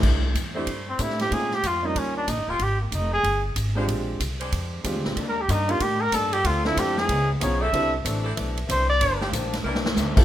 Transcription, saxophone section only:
0, 0, Header, 1, 2, 480
1, 0, Start_track
1, 0, Tempo, 320684
1, 45, Time_signature, 4, 2, 24, 8
1, 15336, End_track
2, 0, Start_track
2, 0, Title_t, "Saxophone section"
2, 0, Program_c, 0, 65
2, 813, Note_on_c, 0, 57, 102
2, 813, Note_on_c, 0, 64, 83
2, 814, Note_on_c, 0, 62, 90
2, 817, Note_on_c, 0, 72, 106
2, 1444, Note_off_c, 0, 57, 0
2, 1444, Note_off_c, 0, 62, 0
2, 1444, Note_off_c, 0, 64, 0
2, 1446, Note_off_c, 0, 72, 0
2, 3720, Note_on_c, 0, 67, 84
2, 3724, Note_on_c, 0, 70, 99
2, 3727, Note_on_c, 0, 56, 92
2, 3728, Note_on_c, 0, 60, 83
2, 3838, Note_off_c, 0, 67, 0
2, 3840, Note_off_c, 0, 70, 0
2, 3842, Note_off_c, 0, 56, 0
2, 3842, Note_off_c, 0, 60, 0
2, 5627, Note_on_c, 0, 62, 87
2, 5635, Note_on_c, 0, 72, 114
2, 5637, Note_on_c, 0, 56, 102
2, 5638, Note_on_c, 0, 67, 89
2, 5751, Note_off_c, 0, 62, 0
2, 5756, Note_off_c, 0, 72, 0
2, 5757, Note_off_c, 0, 56, 0
2, 5757, Note_off_c, 0, 67, 0
2, 6579, Note_on_c, 0, 67, 85
2, 6585, Note_on_c, 0, 72, 107
2, 6589, Note_on_c, 0, 56, 92
2, 6591, Note_on_c, 0, 62, 92
2, 7211, Note_off_c, 0, 67, 0
2, 7214, Note_off_c, 0, 72, 0
2, 7216, Note_off_c, 0, 56, 0
2, 7217, Note_off_c, 0, 62, 0
2, 9458, Note_on_c, 0, 62, 80
2, 9462, Note_on_c, 0, 69, 93
2, 9469, Note_on_c, 0, 53, 89
2, 9470, Note_on_c, 0, 60, 78
2, 9586, Note_off_c, 0, 62, 0
2, 9589, Note_off_c, 0, 69, 0
2, 9593, Note_off_c, 0, 53, 0
2, 9593, Note_off_c, 0, 60, 0
2, 11385, Note_on_c, 0, 60, 88
2, 11386, Note_on_c, 0, 52, 99
2, 11389, Note_on_c, 0, 69, 104
2, 11390, Note_on_c, 0, 62, 89
2, 11509, Note_off_c, 0, 60, 0
2, 11511, Note_off_c, 0, 52, 0
2, 11512, Note_off_c, 0, 69, 0
2, 11513, Note_off_c, 0, 62, 0
2, 12336, Note_on_c, 0, 69, 107
2, 12340, Note_on_c, 0, 60, 82
2, 12341, Note_on_c, 0, 62, 80
2, 12345, Note_on_c, 0, 52, 89
2, 12464, Note_off_c, 0, 69, 0
2, 12466, Note_off_c, 0, 60, 0
2, 12467, Note_off_c, 0, 62, 0
2, 12469, Note_off_c, 0, 52, 0
2, 13784, Note_on_c, 0, 67, 98
2, 13790, Note_on_c, 0, 53, 93
2, 13792, Note_on_c, 0, 58, 85
2, 13794, Note_on_c, 0, 62, 88
2, 13907, Note_off_c, 0, 67, 0
2, 13911, Note_off_c, 0, 53, 0
2, 13912, Note_off_c, 0, 58, 0
2, 13913, Note_off_c, 0, 62, 0
2, 14428, Note_on_c, 0, 70, 108
2, 14437, Note_on_c, 0, 60, 84
2, 14439, Note_on_c, 0, 62, 82
2, 14440, Note_on_c, 0, 52, 93
2, 14638, Note_off_c, 0, 70, 0
2, 14644, Note_off_c, 0, 60, 0
2, 14645, Note_off_c, 0, 62, 0
2, 14646, Note_off_c, 0, 52, 0
2, 15336, End_track
0, 0, End_of_file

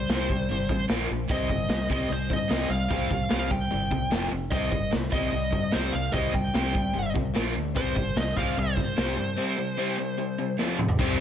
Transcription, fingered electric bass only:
0, 0, Header, 1, 2, 480
1, 0, Start_track
1, 0, Key_signature, -3, "minor"
1, 0, Tempo, 404040
1, 1536, Time_signature, 4, 2, 24, 8
1, 13309, End_track
2, 0, Start_track
2, 0, Title_t, "Fingered electric bass"
2, 0, Program_c, 0, 33
2, 103, Note_on_c, 0, 36, 84
2, 557, Note_off_c, 0, 36, 0
2, 590, Note_on_c, 0, 31, 84
2, 812, Note_off_c, 0, 31, 0
2, 820, Note_on_c, 0, 33, 88
2, 1047, Note_off_c, 0, 33, 0
2, 1066, Note_on_c, 0, 34, 91
2, 1290, Note_off_c, 0, 34, 0
2, 1310, Note_on_c, 0, 34, 93
2, 1532, Note_off_c, 0, 34, 0
2, 1537, Note_on_c, 0, 36, 84
2, 1765, Note_off_c, 0, 36, 0
2, 1778, Note_on_c, 0, 31, 85
2, 1996, Note_off_c, 0, 31, 0
2, 2003, Note_on_c, 0, 36, 93
2, 2237, Note_off_c, 0, 36, 0
2, 2262, Note_on_c, 0, 36, 85
2, 2481, Note_off_c, 0, 36, 0
2, 2489, Note_on_c, 0, 36, 87
2, 2720, Note_off_c, 0, 36, 0
2, 2728, Note_on_c, 0, 43, 84
2, 2960, Note_off_c, 0, 43, 0
2, 2969, Note_on_c, 0, 36, 94
2, 3186, Note_off_c, 0, 36, 0
2, 3193, Note_on_c, 0, 36, 94
2, 3431, Note_off_c, 0, 36, 0
2, 3449, Note_on_c, 0, 36, 93
2, 3680, Note_off_c, 0, 36, 0
2, 3688, Note_on_c, 0, 36, 88
2, 3920, Note_off_c, 0, 36, 0
2, 3932, Note_on_c, 0, 36, 88
2, 4390, Note_off_c, 0, 36, 0
2, 4413, Note_on_c, 0, 31, 84
2, 4639, Note_off_c, 0, 31, 0
2, 4646, Note_on_c, 0, 36, 89
2, 4878, Note_off_c, 0, 36, 0
2, 4890, Note_on_c, 0, 29, 88
2, 5120, Note_off_c, 0, 29, 0
2, 5126, Note_on_c, 0, 29, 80
2, 5358, Note_off_c, 0, 29, 0
2, 5364, Note_on_c, 0, 36, 86
2, 5598, Note_off_c, 0, 36, 0
2, 5606, Note_on_c, 0, 31, 83
2, 5839, Note_off_c, 0, 31, 0
2, 5858, Note_on_c, 0, 36, 86
2, 6079, Note_off_c, 0, 36, 0
2, 6086, Note_on_c, 0, 36, 82
2, 6319, Note_off_c, 0, 36, 0
2, 6328, Note_on_c, 0, 36, 86
2, 6560, Note_off_c, 0, 36, 0
2, 6566, Note_on_c, 0, 43, 78
2, 6799, Note_off_c, 0, 43, 0
2, 6821, Note_on_c, 0, 36, 88
2, 7047, Note_off_c, 0, 36, 0
2, 7054, Note_on_c, 0, 36, 89
2, 7276, Note_off_c, 0, 36, 0
2, 7283, Note_on_c, 0, 36, 89
2, 7518, Note_off_c, 0, 36, 0
2, 7536, Note_on_c, 0, 36, 83
2, 7765, Note_off_c, 0, 36, 0
2, 7770, Note_on_c, 0, 36, 86
2, 8230, Note_off_c, 0, 36, 0
2, 8251, Note_on_c, 0, 31, 89
2, 8483, Note_off_c, 0, 31, 0
2, 8505, Note_on_c, 0, 36, 87
2, 8730, Note_off_c, 0, 36, 0
2, 8744, Note_on_c, 0, 34, 87
2, 8970, Note_off_c, 0, 34, 0
2, 8989, Note_on_c, 0, 38, 93
2, 9209, Note_off_c, 0, 38, 0
2, 9216, Note_on_c, 0, 36, 82
2, 9446, Note_off_c, 0, 36, 0
2, 9457, Note_on_c, 0, 31, 80
2, 9687, Note_off_c, 0, 31, 0
2, 9700, Note_on_c, 0, 36, 87
2, 9928, Note_off_c, 0, 36, 0
2, 9934, Note_on_c, 0, 36, 77
2, 10166, Note_off_c, 0, 36, 0
2, 10185, Note_on_c, 0, 36, 92
2, 10412, Note_off_c, 0, 36, 0
2, 10420, Note_on_c, 0, 43, 83
2, 10649, Note_off_c, 0, 43, 0
2, 10658, Note_on_c, 0, 36, 87
2, 10888, Note_off_c, 0, 36, 0
2, 10894, Note_on_c, 0, 43, 90
2, 11126, Note_off_c, 0, 43, 0
2, 13054, Note_on_c, 0, 36, 96
2, 13280, Note_off_c, 0, 36, 0
2, 13309, End_track
0, 0, End_of_file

